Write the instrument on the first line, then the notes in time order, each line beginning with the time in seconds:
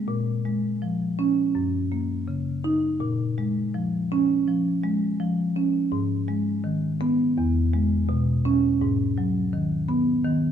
marimba
0.08 A#2
0.45 G#3
0.82 F3
1.19 C#4
1.55 F#2
1.92 A#3
2.28 C#3
2.64 D#4
3.00 A#2
3.38 G#3
3.74 F3
4.12 C#4
4.47 F3
4.84 G#3
5.20 F3
5.56 C#4
5.92 G#2
6.28 G#3
6.64 D#3
7.01 B3
7.38 E2
7.73 G#3
8.09 B2
8.45 C#4
8.81 G#2
9.18 F#3
9.53 D#3
9.89 B3
10.24 D#3